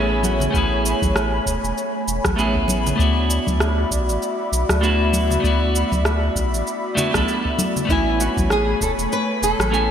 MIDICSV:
0, 0, Header, 1, 6, 480
1, 0, Start_track
1, 0, Key_signature, 3, "major"
1, 0, Tempo, 612245
1, 428, Time_signature, 4, 2, 24, 8
1, 7769, End_track
2, 0, Start_track
2, 0, Title_t, "Analog synth pad"
2, 0, Program_c, 0, 89
2, 0, Note_on_c, 0, 57, 76
2, 0, Note_on_c, 0, 73, 77
2, 0, Note_on_c, 0, 80, 77
2, 0, Note_on_c, 0, 83, 89
2, 2312, Note_off_c, 0, 83, 0
2, 2313, Note_off_c, 0, 57, 0
2, 2313, Note_off_c, 0, 73, 0
2, 2314, Note_off_c, 0, 80, 0
2, 2346, Note_on_c, 0, 66, 79
2, 2346, Note_on_c, 0, 83, 88
2, 2347, Note_on_c, 0, 74, 74
2, 2347, Note_on_c, 0, 76, 73
2, 6155, Note_off_c, 0, 66, 0
2, 6156, Note_off_c, 0, 74, 0
2, 6156, Note_off_c, 0, 76, 0
2, 6156, Note_off_c, 0, 83, 0
2, 6183, Note_on_c, 0, 83, 96
2, 6184, Note_on_c, 0, 73, 78
2, 6184, Note_on_c, 0, 80, 78
2, 6185, Note_on_c, 0, 57, 83
2, 7769, Note_off_c, 0, 57, 0
2, 7769, Note_off_c, 0, 73, 0
2, 7769, Note_off_c, 0, 80, 0
2, 7769, Note_off_c, 0, 83, 0
2, 7769, End_track
3, 0, Start_track
3, 0, Title_t, "Nylon-string guitar"
3, 0, Program_c, 1, 24
3, 0, Note_on_c, 1, 68, 86
3, 193, Note_on_c, 1, 66, 77
3, 205, Note_off_c, 1, 68, 0
3, 427, Note_off_c, 1, 66, 0
3, 430, Note_on_c, 1, 64, 76
3, 878, Note_off_c, 1, 64, 0
3, 6195, Note_on_c, 1, 64, 90
3, 6432, Note_on_c, 1, 66, 85
3, 6438, Note_off_c, 1, 64, 0
3, 6677, Note_off_c, 1, 66, 0
3, 6680, Note_on_c, 1, 68, 96
3, 6898, Note_off_c, 1, 68, 0
3, 6918, Note_on_c, 1, 69, 87
3, 6982, Note_off_c, 1, 69, 0
3, 7155, Note_on_c, 1, 71, 115
3, 7375, Note_off_c, 1, 71, 0
3, 7398, Note_on_c, 1, 69, 97
3, 7769, Note_off_c, 1, 69, 0
3, 7769, End_track
4, 0, Start_track
4, 0, Title_t, "Clean electric guitar"
4, 0, Program_c, 2, 27
4, 0, Note_on_c, 2, 57, 75
4, 0, Note_on_c, 2, 59, 67
4, 0, Note_on_c, 2, 61, 67
4, 0, Note_on_c, 2, 64, 67
4, 0, Note_on_c, 2, 68, 79
4, 387, Note_off_c, 2, 57, 0
4, 397, Note_on_c, 2, 57, 70
4, 398, Note_off_c, 2, 59, 0
4, 401, Note_off_c, 2, 61, 0
4, 404, Note_off_c, 2, 64, 0
4, 409, Note_off_c, 2, 68, 0
4, 411, Note_on_c, 2, 59, 60
4, 424, Note_on_c, 2, 61, 64
4, 438, Note_on_c, 2, 64, 65
4, 451, Note_on_c, 2, 68, 81
4, 1827, Note_off_c, 2, 57, 0
4, 1834, Note_off_c, 2, 59, 0
4, 1841, Note_off_c, 2, 61, 0
4, 1848, Note_off_c, 2, 64, 0
4, 1851, Note_on_c, 2, 57, 77
4, 1855, Note_off_c, 2, 68, 0
4, 1858, Note_on_c, 2, 59, 66
4, 1866, Note_on_c, 2, 61, 68
4, 1870, Note_on_c, 2, 64, 66
4, 1879, Note_on_c, 2, 68, 75
4, 2308, Note_off_c, 2, 57, 0
4, 2318, Note_off_c, 2, 59, 0
4, 2318, Note_on_c, 2, 57, 68
4, 2322, Note_off_c, 2, 61, 0
4, 2324, Note_off_c, 2, 64, 0
4, 2328, Note_off_c, 2, 68, 0
4, 2333, Note_on_c, 2, 59, 65
4, 2344, Note_on_c, 2, 62, 66
4, 2360, Note_on_c, 2, 64, 62
4, 2373, Note_on_c, 2, 66, 78
4, 3748, Note_off_c, 2, 57, 0
4, 3755, Note_off_c, 2, 59, 0
4, 3761, Note_off_c, 2, 62, 0
4, 3769, Note_off_c, 2, 64, 0
4, 3772, Note_on_c, 2, 57, 78
4, 3774, Note_off_c, 2, 66, 0
4, 3777, Note_on_c, 2, 59, 64
4, 3784, Note_on_c, 2, 62, 65
4, 3792, Note_on_c, 2, 64, 66
4, 3798, Note_on_c, 2, 66, 83
4, 4224, Note_off_c, 2, 57, 0
4, 4234, Note_on_c, 2, 57, 73
4, 4237, Note_off_c, 2, 59, 0
4, 4241, Note_off_c, 2, 62, 0
4, 4245, Note_off_c, 2, 64, 0
4, 4248, Note_off_c, 2, 66, 0
4, 4249, Note_on_c, 2, 59, 64
4, 4264, Note_on_c, 2, 62, 61
4, 4276, Note_on_c, 2, 64, 65
4, 4290, Note_on_c, 2, 66, 76
4, 5430, Note_off_c, 2, 57, 0
4, 5437, Note_off_c, 2, 59, 0
4, 5445, Note_off_c, 2, 62, 0
4, 5448, Note_on_c, 2, 57, 83
4, 5451, Note_off_c, 2, 64, 0
4, 5452, Note_off_c, 2, 66, 0
4, 5455, Note_on_c, 2, 59, 74
4, 5462, Note_on_c, 2, 62, 76
4, 5468, Note_on_c, 2, 64, 73
4, 5476, Note_on_c, 2, 66, 84
4, 5561, Note_off_c, 2, 57, 0
4, 5565, Note_off_c, 2, 59, 0
4, 5568, Note_off_c, 2, 62, 0
4, 5571, Note_off_c, 2, 64, 0
4, 5575, Note_off_c, 2, 66, 0
4, 5575, Note_on_c, 2, 57, 68
4, 5589, Note_on_c, 2, 59, 62
4, 5602, Note_on_c, 2, 62, 64
4, 5614, Note_on_c, 2, 64, 62
4, 5626, Note_on_c, 2, 69, 71
4, 6145, Note_off_c, 2, 57, 0
4, 6155, Note_off_c, 2, 59, 0
4, 6155, Note_on_c, 2, 57, 67
4, 6162, Note_off_c, 2, 62, 0
4, 6167, Note_off_c, 2, 69, 0
4, 6168, Note_off_c, 2, 64, 0
4, 6170, Note_on_c, 2, 59, 62
4, 6185, Note_on_c, 2, 61, 63
4, 6197, Note_on_c, 2, 64, 60
4, 6211, Note_on_c, 2, 80, 78
4, 7586, Note_off_c, 2, 57, 0
4, 7594, Note_off_c, 2, 59, 0
4, 7602, Note_off_c, 2, 61, 0
4, 7607, Note_off_c, 2, 64, 0
4, 7612, Note_on_c, 2, 57, 73
4, 7614, Note_off_c, 2, 80, 0
4, 7619, Note_on_c, 2, 59, 65
4, 7624, Note_on_c, 2, 61, 71
4, 7631, Note_on_c, 2, 64, 65
4, 7638, Note_on_c, 2, 80, 80
4, 7769, Note_off_c, 2, 57, 0
4, 7769, Note_off_c, 2, 59, 0
4, 7769, Note_off_c, 2, 61, 0
4, 7769, Note_off_c, 2, 64, 0
4, 7769, Note_off_c, 2, 80, 0
4, 7769, End_track
5, 0, Start_track
5, 0, Title_t, "Analog synth bass"
5, 0, Program_c, 3, 38
5, 0, Note_on_c, 3, 33, 80
5, 375, Note_off_c, 3, 33, 0
5, 425, Note_on_c, 3, 33, 96
5, 738, Note_off_c, 3, 33, 0
5, 802, Note_on_c, 3, 33, 90
5, 1097, Note_off_c, 3, 33, 0
5, 1145, Note_on_c, 3, 28, 97
5, 1242, Note_off_c, 3, 28, 0
5, 1282, Note_on_c, 3, 28, 90
5, 1356, Note_off_c, 3, 28, 0
5, 1628, Note_on_c, 3, 28, 81
5, 1724, Note_off_c, 3, 28, 0
5, 1762, Note_on_c, 3, 33, 79
5, 2298, Note_off_c, 3, 33, 0
5, 2345, Note_on_c, 3, 38, 91
5, 2658, Note_off_c, 3, 38, 0
5, 2724, Note_on_c, 3, 38, 97
5, 3018, Note_off_c, 3, 38, 0
5, 3066, Note_on_c, 3, 35, 88
5, 3201, Note_on_c, 3, 33, 92
5, 3213, Note_off_c, 3, 35, 0
5, 3275, Note_off_c, 3, 33, 0
5, 3545, Note_on_c, 3, 35, 79
5, 3642, Note_off_c, 3, 35, 0
5, 3681, Note_on_c, 3, 38, 82
5, 4217, Note_off_c, 3, 38, 0
5, 4265, Note_on_c, 3, 38, 89
5, 4578, Note_off_c, 3, 38, 0
5, 4641, Note_on_c, 3, 38, 95
5, 4937, Note_off_c, 3, 38, 0
5, 4984, Note_on_c, 3, 35, 89
5, 5120, Note_on_c, 3, 33, 88
5, 5132, Note_off_c, 3, 35, 0
5, 5195, Note_off_c, 3, 33, 0
5, 5601, Note_on_c, 3, 35, 97
5, 5676, Note_off_c, 3, 35, 0
5, 6186, Note_on_c, 3, 33, 92
5, 6498, Note_off_c, 3, 33, 0
5, 6563, Note_on_c, 3, 33, 100
5, 6858, Note_off_c, 3, 33, 0
5, 6906, Note_on_c, 3, 28, 86
5, 7002, Note_off_c, 3, 28, 0
5, 7040, Note_on_c, 3, 28, 87
5, 7115, Note_off_c, 3, 28, 0
5, 7386, Note_on_c, 3, 28, 77
5, 7483, Note_off_c, 3, 28, 0
5, 7520, Note_on_c, 3, 33, 81
5, 7769, Note_off_c, 3, 33, 0
5, 7769, End_track
6, 0, Start_track
6, 0, Title_t, "Drums"
6, 182, Note_on_c, 9, 63, 78
6, 189, Note_on_c, 9, 69, 68
6, 261, Note_off_c, 9, 63, 0
6, 267, Note_off_c, 9, 69, 0
6, 315, Note_on_c, 9, 64, 70
6, 325, Note_on_c, 9, 69, 43
6, 394, Note_off_c, 9, 64, 0
6, 403, Note_off_c, 9, 69, 0
6, 426, Note_on_c, 9, 36, 106
6, 430, Note_on_c, 9, 69, 31
6, 504, Note_off_c, 9, 36, 0
6, 509, Note_off_c, 9, 69, 0
6, 671, Note_on_c, 9, 69, 75
6, 749, Note_off_c, 9, 69, 0
6, 801, Note_on_c, 9, 63, 61
6, 802, Note_on_c, 9, 36, 96
6, 806, Note_on_c, 9, 69, 43
6, 880, Note_off_c, 9, 36, 0
6, 880, Note_off_c, 9, 63, 0
6, 885, Note_off_c, 9, 69, 0
6, 907, Note_on_c, 9, 37, 72
6, 913, Note_on_c, 9, 69, 30
6, 985, Note_off_c, 9, 37, 0
6, 992, Note_off_c, 9, 69, 0
6, 1146, Note_on_c, 9, 36, 59
6, 1153, Note_on_c, 9, 69, 69
6, 1224, Note_off_c, 9, 36, 0
6, 1231, Note_off_c, 9, 69, 0
6, 1290, Note_on_c, 9, 69, 43
6, 1368, Note_off_c, 9, 69, 0
6, 1393, Note_on_c, 9, 69, 31
6, 1472, Note_off_c, 9, 69, 0
6, 1631, Note_on_c, 9, 69, 80
6, 1709, Note_off_c, 9, 69, 0
6, 1761, Note_on_c, 9, 37, 69
6, 1763, Note_on_c, 9, 36, 101
6, 1763, Note_on_c, 9, 63, 60
6, 1767, Note_on_c, 9, 69, 42
6, 1839, Note_off_c, 9, 37, 0
6, 1841, Note_off_c, 9, 36, 0
6, 1841, Note_off_c, 9, 63, 0
6, 1845, Note_off_c, 9, 69, 0
6, 1871, Note_on_c, 9, 69, 32
6, 1950, Note_off_c, 9, 69, 0
6, 2003, Note_on_c, 9, 36, 60
6, 2081, Note_off_c, 9, 36, 0
6, 2101, Note_on_c, 9, 63, 92
6, 2112, Note_on_c, 9, 69, 71
6, 2179, Note_off_c, 9, 63, 0
6, 2190, Note_off_c, 9, 69, 0
6, 2246, Note_on_c, 9, 64, 73
6, 2247, Note_on_c, 9, 69, 47
6, 2325, Note_off_c, 9, 64, 0
6, 2325, Note_off_c, 9, 69, 0
6, 2348, Note_on_c, 9, 36, 113
6, 2353, Note_on_c, 9, 69, 34
6, 2426, Note_off_c, 9, 36, 0
6, 2431, Note_off_c, 9, 69, 0
6, 2590, Note_on_c, 9, 69, 75
6, 2668, Note_off_c, 9, 69, 0
6, 2719, Note_on_c, 9, 63, 69
6, 2723, Note_on_c, 9, 36, 93
6, 2727, Note_on_c, 9, 69, 39
6, 2797, Note_off_c, 9, 63, 0
6, 2802, Note_off_c, 9, 36, 0
6, 2806, Note_off_c, 9, 69, 0
6, 2826, Note_on_c, 9, 37, 73
6, 2832, Note_on_c, 9, 69, 31
6, 2904, Note_off_c, 9, 37, 0
6, 2911, Note_off_c, 9, 69, 0
6, 3067, Note_on_c, 9, 36, 58
6, 3072, Note_on_c, 9, 69, 78
6, 3145, Note_off_c, 9, 36, 0
6, 3150, Note_off_c, 9, 69, 0
6, 3208, Note_on_c, 9, 69, 44
6, 3287, Note_off_c, 9, 69, 0
6, 3311, Note_on_c, 9, 69, 32
6, 3390, Note_off_c, 9, 69, 0
6, 3552, Note_on_c, 9, 69, 75
6, 3631, Note_off_c, 9, 69, 0
6, 3678, Note_on_c, 9, 63, 58
6, 3681, Note_on_c, 9, 37, 73
6, 3687, Note_on_c, 9, 69, 43
6, 3756, Note_off_c, 9, 63, 0
6, 3759, Note_off_c, 9, 37, 0
6, 3765, Note_off_c, 9, 69, 0
6, 3789, Note_on_c, 9, 69, 31
6, 3867, Note_off_c, 9, 69, 0
6, 4022, Note_on_c, 9, 63, 88
6, 4029, Note_on_c, 9, 69, 72
6, 4101, Note_off_c, 9, 63, 0
6, 4107, Note_off_c, 9, 69, 0
6, 4160, Note_on_c, 9, 64, 65
6, 4167, Note_on_c, 9, 69, 45
6, 4238, Note_off_c, 9, 64, 0
6, 4245, Note_off_c, 9, 69, 0
6, 4266, Note_on_c, 9, 36, 109
6, 4270, Note_on_c, 9, 69, 32
6, 4345, Note_off_c, 9, 36, 0
6, 4349, Note_off_c, 9, 69, 0
6, 4511, Note_on_c, 9, 69, 77
6, 4590, Note_off_c, 9, 69, 0
6, 4639, Note_on_c, 9, 63, 63
6, 4642, Note_on_c, 9, 36, 96
6, 4646, Note_on_c, 9, 69, 40
6, 4717, Note_off_c, 9, 63, 0
6, 4720, Note_off_c, 9, 36, 0
6, 4725, Note_off_c, 9, 69, 0
6, 4745, Note_on_c, 9, 37, 72
6, 4751, Note_on_c, 9, 69, 31
6, 4823, Note_off_c, 9, 37, 0
6, 4829, Note_off_c, 9, 69, 0
6, 4985, Note_on_c, 9, 36, 60
6, 4990, Note_on_c, 9, 69, 77
6, 5064, Note_off_c, 9, 36, 0
6, 5068, Note_off_c, 9, 69, 0
6, 5129, Note_on_c, 9, 69, 45
6, 5207, Note_off_c, 9, 69, 0
6, 5230, Note_on_c, 9, 69, 31
6, 5309, Note_off_c, 9, 69, 0
6, 5465, Note_on_c, 9, 64, 78
6, 5470, Note_on_c, 9, 69, 77
6, 5543, Note_off_c, 9, 64, 0
6, 5549, Note_off_c, 9, 69, 0
6, 5599, Note_on_c, 9, 63, 65
6, 5600, Note_on_c, 9, 37, 70
6, 5602, Note_on_c, 9, 36, 97
6, 5606, Note_on_c, 9, 69, 41
6, 5678, Note_off_c, 9, 37, 0
6, 5678, Note_off_c, 9, 63, 0
6, 5681, Note_off_c, 9, 36, 0
6, 5684, Note_off_c, 9, 69, 0
6, 5710, Note_on_c, 9, 69, 30
6, 5788, Note_off_c, 9, 69, 0
6, 5842, Note_on_c, 9, 36, 61
6, 5921, Note_off_c, 9, 36, 0
6, 5947, Note_on_c, 9, 63, 98
6, 5951, Note_on_c, 9, 69, 77
6, 6025, Note_off_c, 9, 63, 0
6, 6030, Note_off_c, 9, 69, 0
6, 6087, Note_on_c, 9, 64, 65
6, 6089, Note_on_c, 9, 69, 44
6, 6165, Note_off_c, 9, 64, 0
6, 6167, Note_off_c, 9, 69, 0
6, 6187, Note_on_c, 9, 36, 110
6, 6192, Note_on_c, 9, 69, 32
6, 6265, Note_off_c, 9, 36, 0
6, 6270, Note_off_c, 9, 69, 0
6, 6431, Note_on_c, 9, 69, 75
6, 6509, Note_off_c, 9, 69, 0
6, 6563, Note_on_c, 9, 36, 95
6, 6566, Note_on_c, 9, 63, 64
6, 6570, Note_on_c, 9, 69, 37
6, 6642, Note_off_c, 9, 36, 0
6, 6644, Note_off_c, 9, 63, 0
6, 6648, Note_off_c, 9, 69, 0
6, 6667, Note_on_c, 9, 37, 63
6, 6673, Note_on_c, 9, 69, 28
6, 6745, Note_off_c, 9, 37, 0
6, 6752, Note_off_c, 9, 69, 0
6, 6907, Note_on_c, 9, 36, 59
6, 6912, Note_on_c, 9, 69, 72
6, 6986, Note_off_c, 9, 36, 0
6, 6991, Note_off_c, 9, 69, 0
6, 7048, Note_on_c, 9, 69, 42
6, 7127, Note_off_c, 9, 69, 0
6, 7153, Note_on_c, 9, 69, 31
6, 7231, Note_off_c, 9, 69, 0
6, 7394, Note_on_c, 9, 69, 72
6, 7472, Note_off_c, 9, 69, 0
6, 7521, Note_on_c, 9, 63, 50
6, 7525, Note_on_c, 9, 37, 67
6, 7532, Note_on_c, 9, 69, 39
6, 7599, Note_off_c, 9, 63, 0
6, 7604, Note_off_c, 9, 37, 0
6, 7610, Note_off_c, 9, 69, 0
6, 7635, Note_on_c, 9, 69, 32
6, 7713, Note_off_c, 9, 69, 0
6, 7769, End_track
0, 0, End_of_file